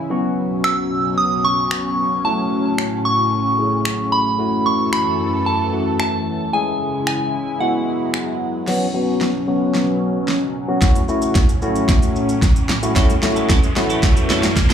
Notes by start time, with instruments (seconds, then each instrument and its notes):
0.10 analog synth pad B2 F#3 C#4, tine electric piano F#3 B3 C#4 F#4
0.64 synth bell E6, finger snap
1.18 synth bell D#6
1.45 synth bell C#6
1.71 finger snap
2.24 analog synth pad A2, tine electric piano A3 C#4 E4 F#4, synth bell A5
2.78 finger snap
3.05 synth bell C#6
3.58 tine electric piano A3 C#4 E4 G#4
3.85 finger snap
4.12 synth bell B5
4.39 analog synth pad F#2 E3 A4, tine electric piano A3 C#4 E4 F#4
4.66 synth bell C#6
4.93 synth bell B5, finger snap
5.46 synth bell A5
5.73 tine electric piano A3 C#4 E4 F#4
6.00 synth bell A5, finger snap
6.53 analog synth pad C#3 G#3 E4, tine electric piano G#3 C#4 E4 G#4, synth bell G#5
7.07 synth bell G#5, finger snap
7.60 analog synth pad F#3 G#3, tine electric piano G#3 B3 E4 F#4, synth bell F#5
8.14 finger snap
8.67 analog synth pad B2 F#3 C#4, tine electric piano F#3 B3 C#4 F#4, snare, crash, riser
8.94 tine electric piano F#3 B3 C#4 F#4
9.21 snare
9.48 tine electric piano F#3 B3 C#4 F#4
9.75 snare
10.28 snare
10.68 tine electric piano F#3 B3 C#4 F#4
10.82 analog synth pad A2 C#4, tine electric piano A3 C#4 E4 F#4, kick, snare, closed hi-hat, shaker
10.95 closed hi-hat, shaker
11.08 tine electric piano A3 C#4 E4 F#4, shaker
11.22 closed hi-hat, shaker
11.35 kick, snare, closed hi-hat, shaker
11.49 closed hi-hat, shaker
11.62 tine electric piano A3 C#4 E4 F#4, shaker
11.76 closed hi-hat, shaker
11.89 kick, snare, closed hi-hat, shaker
12.02 closed hi-hat, shaker
12.16 shaker
12.29 closed hi-hat, shaker
12.42 kick, snare, closed hi-hat, shaker
12.56 closed hi-hat, shaker
12.69 snare, shaker
12.82 tine electric piano A3 C#4 E4 F#4, closed hi-hat, shaker
12.96 analog synth pad F#2 E3 A3, tine electric piano A3 C#4 E4 F#4, clean electric guitar C#4 E4 A4, kick, snare, closed hi-hat, shaker
13.09 muted clean electric guitar stroke, closed hi-hat, shaker
13.22 tine electric piano A3 C#4 E4 F#4, muted clean electric guitar stroke, snare, shaker
13.36 clean electric guitar C#4 E4 A4, closed hi-hat, shaker
13.49 clean electric guitar C#4 E4 A4, kick, snare, closed hi-hat, shaker
13.63 muted clean electric guitar stroke, closed hi-hat, shaker
13.76 tine electric piano A3 C#4 E4 F#4, muted clean electric guitar stroke, snare, shaker
13.89 clean electric guitar C#4 E4 A4, closed hi-hat, shaker
14.03 muted clean electric guitar stroke, kick, snare, closed hi-hat, shaker
14.16 muted clean electric guitar stroke, closed hi-hat, shaker
14.30 clean electric guitar C#4 E4 A4, snare, shaker
14.43 muted clean electric guitar stroke, snare, closed hi-hat, shaker
14.57 muted clean electric guitar stroke, kick, snare, closed hi-hat, shaker
14.70 clean electric guitar A4, snare, closed hi-hat, shaker